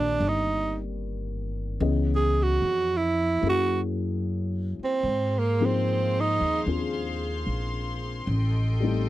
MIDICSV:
0, 0, Header, 1, 6, 480
1, 0, Start_track
1, 0, Tempo, 807537
1, 1069, Time_signature, 4, 2, 24, 8
1, 5404, End_track
2, 0, Start_track
2, 0, Title_t, "String section"
2, 0, Program_c, 0, 48
2, 2995, Note_on_c, 0, 77, 58
2, 2996, Note_on_c, 0, 68, 66
2, 2997, Note_on_c, 0, 84, 69
2, 2998, Note_on_c, 0, 72, 56
2, 4895, Note_off_c, 0, 68, 0
2, 4895, Note_off_c, 0, 77, 0
2, 4896, Note_off_c, 0, 72, 0
2, 4912, Note_on_c, 0, 69, 64
2, 4912, Note_on_c, 0, 75, 58
2, 4912, Note_on_c, 0, 79, 55
2, 5404, Note_off_c, 0, 69, 0
2, 5404, Note_off_c, 0, 75, 0
2, 5404, Note_off_c, 0, 79, 0
2, 5404, Note_off_c, 0, 84, 0
2, 5404, End_track
3, 0, Start_track
3, 0, Title_t, "Tenor saxophone"
3, 0, Program_c, 1, 66
3, 0, Note_on_c, 1, 62, 76
3, 169, Note_on_c, 1, 63, 64
3, 178, Note_off_c, 1, 62, 0
3, 468, Note_off_c, 1, 63, 0
3, 1280, Note_on_c, 1, 68, 72
3, 1444, Note_on_c, 1, 66, 68
3, 1453, Note_off_c, 1, 68, 0
3, 1766, Note_on_c, 1, 64, 62
3, 1775, Note_off_c, 1, 66, 0
3, 2058, Note_off_c, 1, 64, 0
3, 2078, Note_on_c, 1, 66, 71
3, 2262, Note_off_c, 1, 66, 0
3, 2877, Note_on_c, 1, 60, 64
3, 3204, Note_on_c, 1, 58, 55
3, 3213, Note_off_c, 1, 60, 0
3, 3363, Note_on_c, 1, 60, 67
3, 3372, Note_off_c, 1, 58, 0
3, 3687, Note_on_c, 1, 63, 87
3, 3696, Note_off_c, 1, 60, 0
3, 3932, Note_off_c, 1, 63, 0
3, 5404, End_track
4, 0, Start_track
4, 0, Title_t, "Upright piano"
4, 0, Program_c, 2, 0
4, 0, Control_c, 2, 64, 127
4, 0, Note_on_c, 2, 51, 52
4, 0, Note_on_c, 2, 58, 47
4, 0, Note_on_c, 2, 60, 44
4, 0, Note_on_c, 2, 67, 52
4, 0, Note_on_c, 2, 74, 48
4, 1056, Note_off_c, 2, 51, 0
4, 1067, Note_off_c, 2, 58, 0
4, 1071, Note_on_c, 2, 52, 39
4, 1072, Note_off_c, 2, 60, 0
4, 1076, Note_on_c, 2, 61, 41
4, 1077, Control_c, 2, 64, 0
4, 1077, Note_on_c, 2, 59, 42
4, 1081, Note_off_c, 2, 74, 0
4, 1081, Note_on_c, 2, 68, 47
4, 1081, Note_on_c, 2, 75, 37
4, 1089, Note_off_c, 2, 67, 0
4, 1193, Control_c, 2, 64, 127
4, 2029, Note_on_c, 2, 54, 40
4, 2030, Note_off_c, 2, 52, 0
4, 2032, Note_off_c, 2, 61, 0
4, 2033, Note_off_c, 2, 59, 0
4, 2035, Note_off_c, 2, 68, 0
4, 2035, Note_on_c, 2, 58, 36
4, 2036, Note_off_c, 2, 75, 0
4, 2036, Control_c, 2, 64, 0
4, 2041, Note_on_c, 2, 61, 36
4, 2048, Note_on_c, 2, 64, 40
4, 2060, Note_on_c, 2, 68, 45
4, 2136, Control_c, 2, 64, 127
4, 2995, Note_off_c, 2, 54, 0
4, 2998, Note_off_c, 2, 58, 0
4, 3001, Note_off_c, 2, 61, 0
4, 3003, Control_c, 2, 64, 0
4, 3005, Note_off_c, 2, 64, 0
4, 3011, Note_off_c, 2, 68, 0
4, 3096, Control_c, 2, 64, 127
4, 3327, Note_on_c, 2, 53, 42
4, 3329, Note_on_c, 2, 60, 39
4, 3333, Note_on_c, 2, 58, 42
4, 3337, Note_on_c, 2, 63, 38
4, 3340, Note_on_c, 2, 68, 46
4, 3947, Note_off_c, 2, 60, 0
4, 3956, Note_on_c, 2, 60, 34
4, 3964, Note_on_c, 2, 62, 34
4, 3965, Note_on_c, 2, 65, 34
4, 3966, Note_off_c, 2, 68, 0
4, 3975, Note_on_c, 2, 68, 41
4, 4913, Note_off_c, 2, 60, 0
4, 4915, Note_off_c, 2, 53, 0
4, 4917, Note_off_c, 2, 62, 0
4, 4918, Note_off_c, 2, 58, 0
4, 4918, Note_off_c, 2, 65, 0
4, 4920, Note_off_c, 2, 63, 0
4, 4921, Control_c, 2, 64, 0
4, 4923, Note_off_c, 2, 68, 0
4, 5019, Control_c, 2, 64, 127
4, 5232, Note_on_c, 2, 55, 51
4, 5239, Note_on_c, 2, 57, 43
4, 5250, Note_on_c, 2, 60, 39
4, 5253, Note_on_c, 2, 63, 41
4, 5261, Note_on_c, 2, 69, 53
4, 5404, Note_off_c, 2, 55, 0
4, 5404, Note_off_c, 2, 57, 0
4, 5404, Note_off_c, 2, 60, 0
4, 5404, Note_off_c, 2, 63, 0
4, 5404, Note_off_c, 2, 69, 0
4, 5404, End_track
5, 0, Start_track
5, 0, Title_t, "Upright bass"
5, 0, Program_c, 3, 32
5, 0, Note_on_c, 3, 34, 57
5, 105, Note_off_c, 3, 34, 0
5, 122, Note_on_c, 3, 31, 75
5, 1050, Note_off_c, 3, 31, 0
5, 1072, Note_on_c, 3, 37, 81
5, 1527, Note_off_c, 3, 37, 0
5, 1557, Note_on_c, 3, 41, 65
5, 2010, Note_off_c, 3, 41, 0
5, 2037, Note_on_c, 3, 42, 73
5, 2823, Note_off_c, 3, 42, 0
5, 2991, Note_on_c, 3, 44, 67
5, 3781, Note_off_c, 3, 44, 0
5, 3807, Note_on_c, 3, 39, 59
5, 3947, Note_off_c, 3, 39, 0
5, 3961, Note_on_c, 3, 39, 69
5, 4414, Note_off_c, 3, 39, 0
5, 4437, Note_on_c, 3, 34, 60
5, 4890, Note_off_c, 3, 34, 0
5, 4917, Note_on_c, 3, 33, 73
5, 5404, Note_off_c, 3, 33, 0
5, 5404, End_track
6, 0, Start_track
6, 0, Title_t, "Muted upright bass strokes"
6, 2848, Note_on_c, 9, 29, 29
6, 2907, Note_off_c, 9, 29, 0
6, 5404, End_track
0, 0, End_of_file